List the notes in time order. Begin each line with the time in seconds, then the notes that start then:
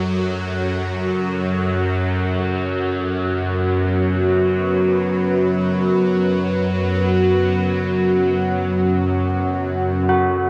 Already playing: F#2 F#3 C#4 F#4 A4 F#5
2.50 B4
10.09 F#4